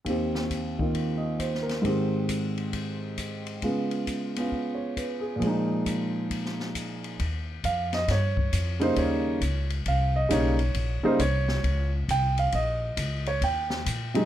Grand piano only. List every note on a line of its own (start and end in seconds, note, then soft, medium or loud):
0.05 1.84 D#2 soft
0.05 0.77 D#3 soft
0.05 1.84 C4 soft
0.10 1.85 G4 soft
0.79 1.82 D#3 soft
0.79 1.84 A#3 soft
0.79 1.85 F4 soft
1.17 1.49 D#5 soft
1.39 1.74 C5 soft
1.63 1.93 A#4 soft
1.82 3.61 G#2 medium
1.82 3.62 D#3 soft
1.82 3.63 C4 soft
1.86 3.64 G4 medium
3.62 5.41 C#3 soft
3.62 5.41 G#3 soft
3.62 4.35 B3 soft
3.62 4.39 F4 soft
4.37 5.41 B3 soft
4.37 5.41 C#4 soft
4.37 5.42 F4 soft
4.75 5.05 C#5 soft
4.98 5.31 B4 soft
5.20 5.51 G#4 soft
5.36 7.16 A#2 soft
5.36 7.18 F3 soft
5.43 7.20 G#3 soft
5.47 7.22 D#4 medium
7.65 7.92 F5 medium
7.94 8.08 D#5 medium
8.11 8.79 C#5 medium
8.80 9.37 C#3 medium
8.80 9.38 G3 medium
8.80 9.38 A#3 medium
8.80 9.38 D#4 medium
8.80 8.97 C5 medium
8.98 9.67 C#5 medium
9.88 10.15 F5 medium
10.16 10.30 D#5 medium
10.29 10.56 C#3 medium
10.29 10.56 G3 medium
10.29 10.56 A#3 medium
10.29 10.57 D#4 medium
10.29 11.01 C#5 medium
11.03 11.18 C#3 medium
11.03 11.18 G3 medium
11.03 11.18 A#3 medium
11.03 11.18 D#4 medium
11.03 11.20 C5 medium
11.20 11.89 C#5 medium
12.11 12.38 G5 medium
12.39 12.53 F5 medium
12.55 13.23 D#5 medium
13.28 13.42 C#5 medium
13.44 14.12 G5 medium
14.14 14.25 C3 medium
14.14 14.25 F#3 medium
14.14 14.25 G#3 medium
14.14 14.25 D#4 medium